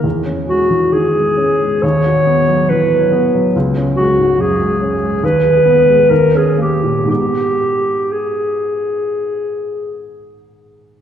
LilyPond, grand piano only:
\new Staff \with { instrumentName = "Grand piano" } { \clef bass \time 4/4 \key gis \minor \tempo 4 = 67 e,16 cis'16 gis16 e16 dis16 gis16 cis'16 gis16 dis,16 fis'16 b16 fis16 e16 fis16 b16 fis16 | cis,16 cis'16 gis16 gis,16 fis,16 gis16 cis'16 gis16 dis,16 gis'16 b16 gis16 dis,16 cis'16 ais16 ais,16 | <gis, gis b dis'>1 | }